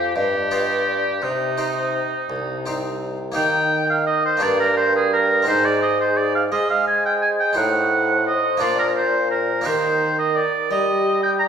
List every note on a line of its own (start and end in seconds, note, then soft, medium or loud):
0.00 0.12 F2 medium
0.00 0.14 F2 medium
0.00 0.11 G4 medium
0.00 0.17 F5 medium
0.15 1.19 G2 soft
0.15 1.21 G2 medium
0.15 1.24 G4 medium
0.15 0.59 D#5 medium
0.51 1.03 B3 soft
0.51 1.03 F4 soft
0.51 1.03 G4 soft
0.86 1.22 D5 medium
1.22 1.97 C3 soft
1.22 2.00 C3 medium
1.22 2.83 D#4 medium
1.22 2.28 C5 medium
1.58 2.35 C4 soft
1.58 2.35 D#4 soft
1.58 2.35 G4 soft
2.30 3.32 C2 soft
2.30 3.32 C2 medium
2.66 3.16 C4 soft
2.66 3.17 D#4 soft
2.66 3.17 G4 soft
3.32 4.36 A#3 medium
3.32 4.37 D#4 medium
3.32 4.38 G4 soft
3.32 3.85 G5 medium
3.36 4.38 D#3 medium
3.36 4.38 D#3 soft
3.89 4.06 F5 medium
4.06 4.24 D#5 medium
4.25 4.44 C5 medium
4.37 5.42 A#3 soft
4.37 5.42 D4 soft
4.37 5.43 G4 soft
4.42 5.43 G2 soft
4.42 5.45 G2 medium
4.42 5.43 A#4 medium
4.42 4.59 D5 medium
4.60 4.76 A#4 medium
4.77 4.94 C5 medium
4.96 5.12 G#4 medium
5.13 5.47 A#4 medium
5.43 6.51 G#3 soft
5.43 7.51 C4 soft
5.43 7.52 D#4 soft
5.47 6.50 G#2 medium
5.47 6.48 G#2 medium
5.47 6.54 G#4 medium
5.47 5.67 C5 medium
5.65 5.82 D5 medium
5.82 5.99 D#5 medium
6.01 6.18 C5 medium
6.17 6.34 D5 medium
6.35 6.43 F5 medium
6.52 7.53 G#3 medium
6.52 7.58 G#3 medium
6.52 7.56 C5 medium
6.52 6.69 D#5 medium
6.70 6.87 F5 medium
6.87 7.04 G#5 medium
7.06 7.13 G5 medium
7.22 7.30 G#5 medium
7.40 7.59 G5 medium
7.53 8.44 A2 medium
7.53 8.56 C4 soft
7.53 8.57 D#4 medium
7.53 9.62 C5 medium
7.57 8.57 A2 medium
7.57 8.26 F#5 medium
8.27 8.63 D#5 medium
8.57 9.64 A#2 medium
8.57 9.60 A#3 soft
8.57 9.62 D4 soft
8.57 9.62 F4 soft
8.57 8.78 D5 medium
8.61 9.62 A#2 soft
8.79 8.87 A#4 medium
8.96 9.30 C5 medium
9.31 9.67 A#4 medium
9.61 11.48 A#3 medium
9.61 11.48 D#4 soft
9.61 11.48 G4 soft
9.65 10.39 D#3 medium
9.65 10.42 D#3 medium
9.65 10.69 A#4 medium
9.65 10.18 C5 medium
10.19 10.38 D#5 medium
10.36 10.71 D5 medium
10.71 11.48 G3 medium
10.71 11.45 G4 medium
10.71 11.22 D#5 medium
11.23 11.31 G5 medium
11.39 11.47 A#5 medium